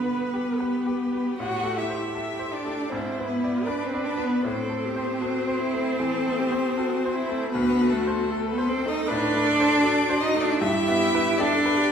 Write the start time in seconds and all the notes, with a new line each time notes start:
Already playing: G2 D3 B3 G4 B4
0.05 B3
0.33 G4
0.59 G4 B4
0.86 G4
1.13 B3
1.38 A2 F#4 F#5
1.63 A3
1.77 E4 E5
1.90 C5
2.15 A4
2.39 C5
2.53 D4 D5
2.65 A3
2.89 G#2 C4 E4 C5
3.18 B3
3.28 B3 B4
3.44 D5
3.65 D4 B4 D5
3.86 C4 C5
3.94 D5
4.05 D4 D5
4.17 B3
4.25 B3 B4
4.43 A2 C4 A4 C5
4.69 A3
4.85 G4
4.96 C5
5.20 F#4 A4
5.48 C5
5.59 E4
5.74 A3
5.99 E3 A4
6.26 A3
6.39 G4
6.52 C5
6.77 F#4 A4
7.05 C5
7.15 E4
7.29 A3
7.52 D2 B3 F#4 B4
7.81 A3
7.90 A3 A4
8.07 C5
8.30 A4
8.48 B3 B4
8.58 C5
8.69 C4 C5
8.86 A3 D#4 D#5
9.07 A2 D4 B4 D5
9.34 A3
9.45 A4
9.60 C5
9.82 F#4 A4
10.10 C5
10.20 D#4 D#5
10.35 A3
10.40 D4 D5
10.59 G2 E4 G4 E5
10.88 B3
11.15 B4
11.37 D4 G4 A4 D5
11.66 B4
11.77 G4